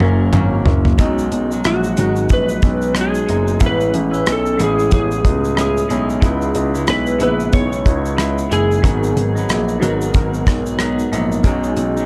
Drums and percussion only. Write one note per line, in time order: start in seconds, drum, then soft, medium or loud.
0.00 mid tom medium
0.33 clap medium
0.33 mid tom medium
0.65 floor tom loud
0.85 floor tom medium
0.99 kick medium
0.99 closed hi-hat medium
0.99 shaker medium
1.18 shaker medium
1.32 closed hi-hat soft
1.32 shaker soft
1.52 shaker medium
1.64 cross-stick loud
1.64 closed hi-hat medium
1.64 shaker medium
1.84 shaker soft
1.97 closed hi-hat soft
1.97 shaker medium
2.16 shaker soft
2.29 kick medium
2.29 closed hi-hat medium
2.29 shaker medium
2.49 shaker soft
2.62 kick medium
2.62 closed hi-hat soft
2.62 shaker medium
2.82 shaker soft
2.95 cross-stick medium
2.95 closed hi-hat medium
2.95 shaker medium
3.15 shaker soft
3.29 closed hi-hat soft
3.29 shaker soft
3.48 shaker soft
3.60 kick medium
3.60 closed hi-hat medium
3.60 shaker medium
3.81 shaker medium
3.94 closed hi-hat soft
3.94 shaker soft
4.14 shaker soft
4.26 cross-stick loud
4.26 closed hi-hat medium
4.26 shaker medium
4.46 shaker soft
4.60 closed hi-hat medium
4.60 shaker medium
4.79 shaker soft
4.91 kick medium
4.91 closed hi-hat medium
4.91 shaker medium
5.11 shaker soft
5.25 kick medium
5.25 closed hi-hat medium
5.25 shaker medium
5.44 shaker soft
5.57 cross-stick medium
5.57 closed hi-hat medium
5.57 shaker medium
5.77 shaker soft
5.90 closed hi-hat soft
5.90 shaker soft
6.10 shaker soft
6.22 kick loud
6.22 closed hi-hat medium
6.22 shaker medium
6.42 shaker medium
6.55 closed hi-hat soft
6.55 shaker soft
6.75 shaker soft
6.87 cross-stick loud
6.87 closed hi-hat medium
6.87 shaker medium
7.07 shaker soft
7.20 closed hi-hat medium
7.20 shaker medium
7.40 shaker soft
7.53 kick medium
7.53 closed hi-hat medium
7.53 shaker medium
7.73 shaker medium
7.86 kick medium
7.86 closed hi-hat medium
7.86 shaker medium
8.05 shaker medium
8.18 cross-stick medium
8.18 closed hi-hat medium
8.18 shaker medium
8.38 shaker medium
8.52 closed hi-hat soft
8.52 shaker soft
8.71 shaker soft
8.84 kick loud
8.84 closed hi-hat medium
8.84 shaker medium
9.03 shaker medium
9.17 closed hi-hat soft
9.17 shaker soft
9.37 shaker soft
9.49 cross-stick medium
9.49 closed hi-hat medium
9.49 shaker medium
9.69 shaker soft
9.82 closed hi-hat soft
9.82 shaker medium
10.01 shaker medium
10.14 kick medium
10.14 closed hi-hat medium
10.14 shaker medium
10.34 shaker soft
10.47 kick medium
10.47 cross-stick medium
10.47 closed hi-hat medium
10.47 shaker medium
10.66 shaker medium
10.79 cross-stick medium
10.79 closed hi-hat medium
10.79 shaker medium
10.99 shaker medium
11.13 closed hi-hat soft
11.13 shaker soft
11.32 shaker soft
11.44 kick loud
11.44 closed hi-hat medium
11.44 shaker medium
11.64 shaker medium
11.77 closed hi-hat soft
11.77 shaker soft
11.97 shaker soft